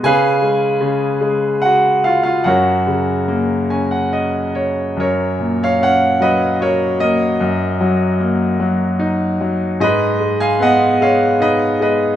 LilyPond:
<<
  \new Staff \with { instrumentName = "Grand piano" } { \time 3/4 \key fis \major \tempo 4 = 75 << { <gis' b' eis'' gis''>2 <fis' fis''>8 <eis' eis''>16 <eis' eis''>16 | <fis' ais' cis'' fis''>2 r4 | <ais' cis''>8. <cis'' eis''>16 <cis'' fis''>8 <b' dis''>8 <ais' cis''>8 <ais' dis''>8~ | <ais' dis''>2~ <ais' dis''>8 r8 |
<b' dis''>8. <eis'' gis''>16 <dis'' fis''>8 <cis'' eis''>8 <b' dis''>8 <b' dis''>8 | } \\ { r2. | r4. gis''16 fis''16 dis''8 cis''8 | r2. | r2. |
r2. | } >> }
  \new Staff \with { instrumentName = "Grand piano" } { \clef bass \time 3/4 \key fis \major cis8 gis8 cis8 gis4. | fis,8 cis8 ais8 cis'4. | fis,8 ais,8 cis'8 fis8 fis'8 ais8 | fis,8 fis8 ais8 fis8 dis'8 fis8 |
gis,8 gis8 b8 gis8 dis'8 gis8 | }
>>